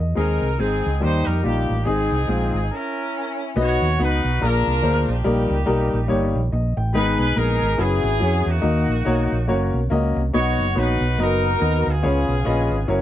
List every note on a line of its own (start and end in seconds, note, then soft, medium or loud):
0.00 0.14 E2 medium
0.00 0.39 D#5 medium
0.15 0.38 D#2 loud
0.15 0.80 D#3 medium
0.15 0.45 G#3 medium
0.15 0.45 C4 medium
0.15 0.46 D#4 medium
0.15 0.59 D#4 medium
0.15 0.46 G#4 loud
0.15 0.56 A#4 medium
0.42 0.57 C2 medium
0.59 0.81 G#1 medium
0.59 0.88 G#3 medium
0.59 0.88 C4 medium
0.59 0.99 C4 medium
0.59 0.89 D#4 medium
0.59 0.99 D#4 medium
0.59 1.02 G#4 loud
0.59 0.89 G#4 medium
0.86 1.00 C#2 medium
1.00 1.24 D#2 loud
1.00 1.65 D#3 medium
1.00 1.30 G3 medium
1.00 1.30 A#3 medium
1.00 1.31 D#4 medium
1.00 1.43 D#4 medium
1.00 1.31 G4 medium
1.00 1.41 G4 medium
1.00 1.26 C5 loud
1.25 1.42 F2 medium
1.25 1.43 A#4 loud
1.42 1.66 A#1 medium
1.42 1.73 G3 medium
1.42 1.73 A#3 medium
1.42 1.83 A#3 medium
1.42 1.73 D#4 medium
1.42 1.83 D#4 medium
1.42 1.73 F4 medium
1.42 1.83 G4 loud
1.70 1.84 A1 medium
1.84 2.08 G#1 medium
1.84 2.50 G#2 medium
1.84 2.15 G#3 medium
1.84 2.15 C4 medium
1.84 2.68 C4 medium
1.84 2.16 D#4 medium
1.84 2.68 D#4 medium
1.84 2.51 G#4 loud
1.84 2.16 G#4 loud
2.12 2.27 C2 medium
2.28 2.50 A#1 medium
2.28 2.58 G#3 medium
2.28 2.58 C4 medium
2.28 2.58 D#4 medium
2.28 2.58 F4 medium
2.52 2.69 G#1 medium
2.52 2.69 G#4 medium
2.72 3.53 C#4 medium
2.72 3.53 E4 medium
2.72 3.39 A#4 medium
3.56 3.77 B1 medium
3.56 4.19 B2 medium
3.56 3.85 B3 loud
3.56 3.85 D#4 medium
3.56 3.86 F#4 medium
3.56 3.99 F#4 medium
3.56 3.86 B4 medium
3.56 3.86 D#5 loud
3.61 3.98 C#5 loud
3.82 3.97 D#2 medium
3.99 4.20 C#2 loud
3.99 4.28 B3 medium
3.99 4.28 D#4 medium
3.99 4.39 D#4 medium
3.99 4.28 F#4 medium
3.99 4.39 F#4 medium
3.99 4.28 B4 medium
3.99 4.40 B4 loud
3.99 4.28 F#5 medium
4.24 4.39 B1 medium
4.41 4.63 A#1 loud
4.41 5.04 A#2 medium
4.41 4.70 A#3 medium
4.41 4.70 D4 medium
4.41 5.22 D4 medium
4.41 4.70 F4 medium
4.41 5.22 F4 medium
4.41 4.70 G#4 medium
4.41 4.71 A#4 medium
4.41 5.09 A#4 loud
4.67 4.82 C2 medium
4.82 5.04 D2 loud
4.82 5.12 A#3 medium
4.82 5.12 D4 medium
4.82 5.12 F4 medium
4.82 5.12 G#4 medium
4.82 5.12 C5 medium
5.08 5.23 A#1 loud
5.08 6.31 A#3 medium
5.08 6.31 D#4 medium
5.08 6.31 G4 medium
5.24 5.47 A#1 loud
5.24 5.88 A#2 medium
5.24 5.54 G3 loud
5.24 5.54 A#3 medium
5.24 5.54 D#4 medium
5.24 5.54 G4 medium
5.24 5.54 A#4 loud
5.50 5.65 C#2 medium
5.66 5.89 B1 medium
5.66 5.96 G3 loud
5.66 5.96 A#3 medium
5.66 5.96 D#4 loud
5.66 5.96 G4 medium
5.66 5.96 A#4 loud
5.93 6.08 A#1 loud
6.08 6.32 G1 loud
6.08 6.38 G3 medium
6.08 6.38 A#3 medium
6.08 6.38 D#4 medium
6.08 6.39 G4 medium
6.08 6.39 C#5 loud
6.36 6.50 A#1 loud
6.52 6.74 A#1 loud
6.52 6.76 D#5 medium
6.77 6.92 A1 loud
6.77 7.17 G5 medium
6.94 7.16 G#1 loud
6.94 7.58 G#2 medium
6.94 7.23 G#3 loud
6.94 7.24 B3 medium
6.94 7.24 D#4 medium
6.94 7.37 D#4 medium
6.94 7.24 G#4 medium
6.94 7.76 G#4 medium
6.94 7.17 B4 loud
6.94 7.24 B4 loud
7.19 7.34 B1 medium
7.19 7.36 B4 loud
7.35 7.58 A#1 loud
7.35 7.65 G#3 medium
7.35 7.66 B3 medium
7.35 7.66 D#4 medium
7.35 7.77 D#4 medium
7.35 7.66 G#4 medium
7.35 7.66 A#4 medium
7.35 7.80 A#4 loud
7.62 7.77 G#1 loud
7.78 8.00 F#1 loud
7.78 8.60 B3 medium
7.78 8.08 C#4 medium
7.78 8.08 E4 medium
7.78 8.60 E4 medium
7.78 8.08 F#4 medium
7.78 8.08 G#4 medium
7.78 8.47 G#4 loud
7.78 8.08 B4 medium
8.04 8.19 G#1 medium
8.20 8.43 F2 loud
8.20 8.50 C#4 medium
8.20 8.50 E4 medium
8.20 8.50 F#4 medium
8.20 8.50 G#4 medium
8.20 8.50 C#5 medium
8.46 8.61 E2 medium
8.46 9.70 A#3 medium
8.46 9.70 D#4 medium
8.46 9.74 F#4 loud
8.61 8.85 D#2 loud
8.61 9.26 D#3 medium
8.61 8.92 A#3 loud
8.61 8.92 D#4 medium
8.61 8.92 F#4 medium
8.61 8.92 A#4 medium
8.61 8.92 D#5 loud
8.88 9.03 A#1 medium
9.05 9.27 B1 loud
9.05 9.35 A#3 medium
9.05 9.35 D#4 loud
9.05 9.35 F#4 medium
9.05 9.35 A#4 medium
9.05 9.36 C#5 loud
9.32 9.47 A#1 medium
9.48 9.70 F#1 loud
9.48 9.77 A#3 medium
9.48 9.77 C#4 medium
9.48 9.78 F#4 medium
9.48 9.78 A#4 medium
9.48 9.78 C#5 loud
9.74 9.89 B1 medium
9.90 10.12 C#2 loud
9.90 10.20 A#3 loud
9.90 10.20 C#4 medium
9.90 10.20 F#4 medium
9.90 10.20 A#4 medium
9.90 10.21 D#5 loud
10.16 10.31 C2 loud
10.33 10.55 B1 loud
10.33 10.97 B2 medium
10.33 10.63 B3 medium
10.33 10.63 D#4 medium
10.33 10.63 F#4 medium
10.33 10.75 F#4 medium
10.33 10.63 B4 medium
10.33 10.74 C#5 loud
10.33 10.63 D#5 loud
10.59 10.74 F#1 medium
10.75 10.97 A#1 loud
10.75 11.05 B3 medium
10.75 11.05 D#4 medium
10.75 11.18 D#4 medium
10.75 11.05 F#4 medium
10.75 11.18 F#4 medium
10.75 11.05 B4 medium
10.75 11.19 B4 loud
10.75 11.05 C#5 medium
11.01 11.16 B1 loud
11.18 11.55 F#1 loud
11.18 11.48 B3 medium
11.18 11.48 D#4 medium
11.18 12.00 D#4 medium
11.18 11.48 F#4 medium
11.18 12.00 F#4 medium
11.18 11.86 A#4 loud
11.18 11.48 B4 medium
11.18 11.48 D#5 medium
11.60 11.82 D#2 loud
11.60 11.90 B3 medium
11.60 11.90 D#4 medium
11.60 11.90 F#4 medium
11.60 11.90 B4 medium
11.60 11.90 D#5 medium
11.87 12.01 D2 loud
11.87 13.02 B3 medium
11.87 13.02 F4 medium
11.87 13.02 G#4 loud
12.03 12.25 C#2 loud
12.03 12.66 C#3 medium
12.03 12.32 C#4 medium
12.03 12.32 F4 medium
12.03 12.33 G#4 medium
12.03 12.33 B4 medium
12.03 12.33 C#5 loud
12.28 12.43 B1 medium
12.45 12.67 A#1 loud
12.45 12.75 C#4 loud
12.45 12.75 F4 medium
12.45 12.75 G#4 medium
12.45 12.75 B4 medium
12.45 12.75 D#5 loud
12.70 12.86 G#1 medium
12.88 13.02 F#1 loud
12.88 13.02 C#4 medium
12.88 13.02 E4 medium
12.88 13.02 F#4 medium
12.88 13.02 A#4 medium
12.88 13.02 C#5 loud